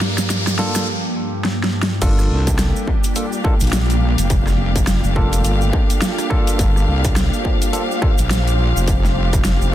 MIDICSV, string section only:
0, 0, Header, 1, 2, 480
1, 0, Start_track
1, 0, Key_signature, -2, "minor"
1, 0, Tempo, 571429
1, 1695, Time_signature, 4, 2, 24, 8
1, 8188, End_track
2, 0, Start_track
2, 0, Title_t, "String section"
2, 0, Program_c, 0, 48
2, 0, Note_on_c, 0, 62, 59
2, 0, Note_on_c, 0, 67, 63
2, 0, Note_on_c, 0, 70, 62
2, 0, Note_on_c, 0, 77, 62
2, 732, Note_off_c, 0, 70, 0
2, 733, Note_off_c, 0, 67, 0
2, 734, Note_off_c, 0, 77, 0
2, 735, Note_off_c, 0, 62, 0
2, 1701, Note_on_c, 0, 62, 70
2, 1979, Note_on_c, 0, 67, 77
2, 2180, Note_on_c, 0, 58, 80
2, 2810, Note_on_c, 0, 77, 84
2, 8188, Note_off_c, 0, 58, 0
2, 8188, Note_off_c, 0, 62, 0
2, 8188, Note_off_c, 0, 67, 0
2, 8188, Note_off_c, 0, 77, 0
2, 8188, End_track
0, 0, End_of_file